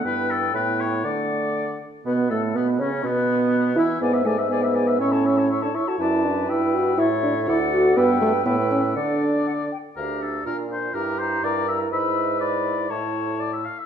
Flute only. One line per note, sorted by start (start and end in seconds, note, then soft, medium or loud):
0.05 1.06 G5 medium
1.04 1.80 F#5 soft
2.06 2.12 B4 medium
2.31 2.58 A4 soft
2.56 2.81 B4 medium
2.80 3.05 C#4 medium
3.03 3.76 B4 medium
3.77 3.83 E4 medium
4.02 4.14 G#5 soft
4.13 4.27 E5 soft
4.25 4.39 G#5 soft
4.38 4.49 E5 soft
4.50 4.64 G#5 soft
4.62 4.77 E5 soft
4.75 4.89 G#5 soft
4.88 4.99 E5 soft
5.00 5.13 C#6 soft
5.12 5.26 A5 soft
5.25 5.38 C#6 soft
5.37 5.48 A5 soft
5.49 5.63 C#6 soft
5.62 5.76 A5 soft
5.75 5.89 C#6 soft
5.88 5.98 A5 soft
5.99 6.50 A5 soft
6.49 7.00 G5 soft
6.99 7.50 E5 medium
7.48 7.98 F#5 medium
7.97 8.45 G5 medium
8.45 8.97 G5 medium
8.96 9.24 F#5 soft
9.46 9.52 F#5 soft
9.72 9.78 G5 soft
9.97 10.21 F5 soft
10.21 10.45 F5 soft
10.46 10.70 F5 soft
10.71 10.95 F5 soft
10.95 11.19 A#5 soft
11.20 11.43 A#5 soft
11.44 11.68 A#5 soft
11.69 11.91 A#5 soft
11.92 12.37 B5 soft
12.40 12.92 B5 soft
12.91 13.66 A5 soft